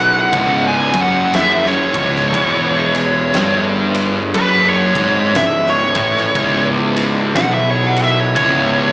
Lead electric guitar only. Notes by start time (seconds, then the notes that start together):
Already playing: F#5
0.67 G#5
1.01 F#5
1.34 E5
1.68 C#5
4.35 B4
4.69 C#5
5.37 E5
5.70 C#5
7.36 F#5
7.54 E5
7.70 C#5
7.87 F#5
8.03 E5
8.20 C#5
8.36 C#5